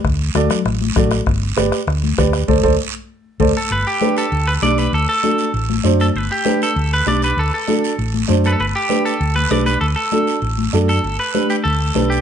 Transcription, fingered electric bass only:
\new Staff \with { instrumentName = "Fingered electric bass" } { \clef bass \time 4/4 \key g \major \tempo 4 = 196 d,4 d,8 r8 a,,4 a,,4 | g,,4 g,,8 r8 d,4 d,4 | d,8 d,8 r2 d,8 r8 | g,,8 r4. d,4 b,,4 |
d,8 r4. a,,4 fis,4 | g,,8 r4. d,4 b,,4 | d,8 r4. a,,4 fis,4 | g,,8 r4. d,4 b,,4 |
d,8 r4. a,,4 fis,4 | g,,8 r4. d,4 b,,4 | }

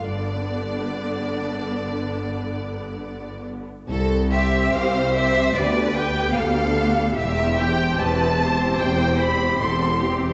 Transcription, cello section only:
\new Staff \with { instrumentName = "Cello section" } { \clef bass \time 4/4 \key c \major \tempo 4 = 73 g,2.~ g,8. r16 | c,4 c,4 d,4 d,4 | e,4 e,4 e,4 e,4 | }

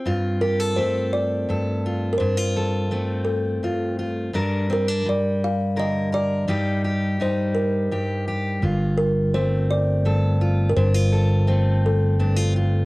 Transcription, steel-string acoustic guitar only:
\new Staff \with { instrumentName = "Steel-string acoustic guitar" } { \time 6/8 \key f \mixolydian \tempo 4. = 56 << { <c' f'>8 g'16 a'16 c'4 a'8 f'8 | d'16 f'16 a'8 c'4 f'8 f'8 | <g d' bes'>8 c'16 d'16 r4 bes'8 bes'8 | <g ees' g'>8 g'8 ees'4 g'8 g'8 |
f'4 c'4 a'8 f'8 | d'16 f'16 a'8 c'4 d'16 f'16 f'8 | } \\ { g,4 a4 g,4 | g,4 a4 g,4 | g,4 g4 d4 | g,4 g4 g,4 |
g,4 a4 g,4 | g,4 a4 g,4 | } >> }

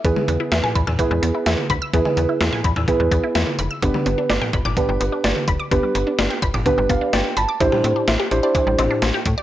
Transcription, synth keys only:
\new Staff \with { instrumentName = "Synth keys" } { \time 4/4 \key g \mixolydian \tempo 4 = 127 << { r1 | r1 | r1 | r2 r8 f''8 g''8 a''8 |
\key c \major r1 | } \\ { <b e' gis' b'>4~ <b e' gis' b'>16 r8. <b e' gis' b'>4~ <b e' gis' b'>16 r8. | <b e' gis' b'>4~ <b e' gis' b'>16 r8. <b e' gis' b'>4~ <b e' gis' b'>16 r8. | <b d' g' b'>4~ <b d' g' b'>16 r8. <b d' g' b'>4~ <b d' g' b'>16 r8. | <b d' g' b'>4~ <b d' g' b'>16 r8. <b d' g' b'>4~ <b d' g' b'>16 r8. |
<d' e' g' c''>4 r8 <d' e' g' c''>16 <d' e' g' c''>4~ <d' e' g' c''>16 r4 | } >> }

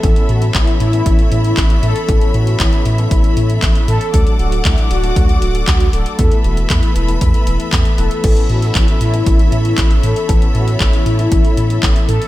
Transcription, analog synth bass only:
\new Staff \with { instrumentName = "Analog synth bass" } { \clef bass \time 4/4 \key a \major \tempo 4 = 117 a,,8 a,8 a,,8 a,8 a,,8 a,8 a,,8 a,8 | a,,8 a,8 a,,8 a,8 a,,8 a,8 a,,8 a,8 | d,8 d,,8 d,8 d,,8 d,8 d,,8 d,8 d,,8 | e,8 e,,8 e,8 e,,8 e,8 e,,8 e,8 e,,8 |
a,,8 a,8 a,,8 a,8 a,,8 a,8 a,,8 a,8 | a,,8 a,8 a,,8 a,8 a,,8 a,8 a,,8 a,8 | }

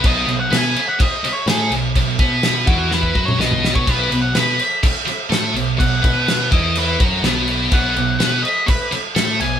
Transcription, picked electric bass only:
\new Staff \with { instrumentName = "Picked electric bass" } { \clef bass \time 4/4 \key b \mixolydian \tempo 4 = 125 b,,8 b,,8 b,8 r4. a,8 b,,8 | b,,8 b,4 e,4 fis,8 b,,4 | b,,8 b,,8 b,8 r4. a,8 b,,8 | b,,8 b,4 e,4 fis,8 b,,4 |
b,,8 b,,8 b,8 r4. a,8 b,,8 | }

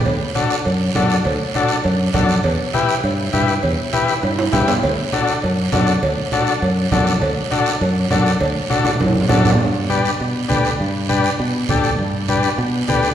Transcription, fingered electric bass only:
\new Staff \with { instrumentName = "Fingered electric bass" } { \clef bass \time 4/4 \key g \major \tempo 4 = 201 d,8 r4. fis,4 fis,4 | d,8 r4. fis,4 fis,4 | e,8 r4. g,4 g,4 | e,8 r4. g,4 g,4 |
d,8 r4. fis,4 fis,4 | d,8 r4. fis,4 fis,4 | d,8 r4. fis,4 fis,4 | d,8 r4. fis,4 fis,4 |
g,2 b,4 d,4 | g,2 b,4 d,4 | g,2 b,4 d,4 | }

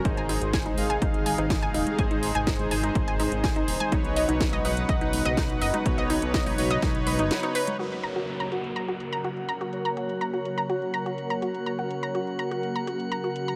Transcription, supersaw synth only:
\new Staff \with { instrumentName = "Supersaw synth" } { \time 4/4 \key fis \major \tempo 4 = 124 <dis' gis' bis'>4. <dis' gis' eis''>2~ <dis' gis' eis''>8 | <dis' gis' bis'>4. <dis' gis' bis'>2~ <dis' gis' bis'>8 | <dis' b' cis''>4. <dis' b' fis''>2~ <dis' b' fis''>8 | <dis' b' cis''>4. <dis' b' cis''>2~ <dis' b' cis''>8 |
<fis' ais' cis''>4. <fis' ais' fis''>2~ <fis' ais' fis''>8 | <fis' ais' cis''>4. <fis' ais' cis''>2~ <fis' ais' cis''>8 | <fis' ais' cis''>4. <fis' ais' fis''>2~ <fis' ais' fis''>8 | }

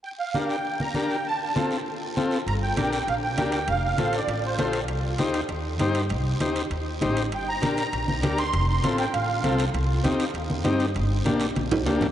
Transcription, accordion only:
\new Staff \with { instrumentName = "Accordion" } { \time 4/4 \key g \minor \tempo 4 = 198 g''8 f''4 g''4 bes''4 g''8 | a''8 a''4 r2 r8 | bes''8 g''4 g''8 f''8 g''4 g''8 | f''8 f''4 d''4 c''4 r8 |
r1 | r1 | g''8 bes''4 bes''4 bes''4 c'''8~ | c'''8 c'''4 g''8 f''4. r8 |
r1 | r1 | }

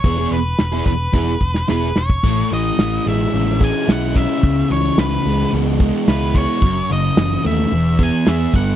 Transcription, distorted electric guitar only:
\new Staff \with { instrumentName = "Distorted electric guitar" } { \time 4/4 \key a \lydian \tempo 4 = 109 <e b e' gis'>16 <e b e' gis'>16 r8. <e b e' gis'>16 r8 <e b e' gis'>16 r8. <e b e' gis'>16 r8. | a,8 e8 e8 gis8 cis'8 gis8 e'8 cis'8 | cis8 e8 e8 gis8 b8 gis8 e'8 b8 | fis,8 cis8 e8 a8 e,8 b8 gis'8 g8 | }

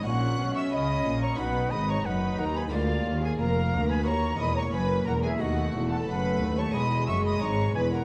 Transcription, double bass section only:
\new Staff \with { instrumentName = "Double bass section" } { \clef bass \time 4/4 \key b \major \tempo 4 = 90 ais,,8 b,,8 cis,8 ais,,8 b,,8 gis,,8 fis,,8 dis,8 | d,8 dis,8 eis,,8 d,8 dis,8 e,,8 fis,,8 e,,8 | dis,8 e,,8 fis,,8 dis,8 e,,8 fis,,8 gis,,8 e,,8 | }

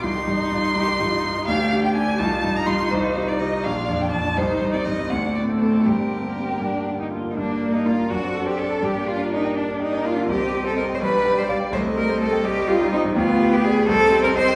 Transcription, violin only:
\new Staff \with { instrumentName = "Violin" } { \time 6/8 \key g \minor \tempo 4. = 83 c'''2. | f''8. g''16 aes''8 a''8. bes''16 c'''8 | c''8. d''16 ees''8 f''8. g''16 a''8 | c''8. d''16 ees''8 fis''8 d''8 a'8 |
g'2~ g'8 r8 | d'8. ees'16 f'8 fis'8. g'16 a'8 | g'8 f'8 ees'8 d'8 ees'8 f'8 | ees''4. d''4. |
ees''4. ees''4. | g''4. ees''4. | }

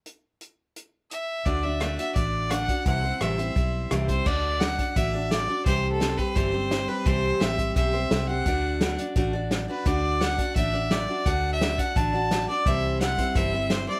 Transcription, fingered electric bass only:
\new Staff \with { instrumentName = "Fingered electric bass" } { \clef bass \time 4/4 \key d \mixolydian \tempo 4 = 172 r1 | d,2 a,,2 | c,4 a,,4 b,,4 c,4 | d,2 a,,2 |
c,2 g,,2 | c,4 a,,4 b,,4 c,4 | d,2 a,,2 | d,2 a,,2 |
d,2 a,,2 | c,2 g,,2 | }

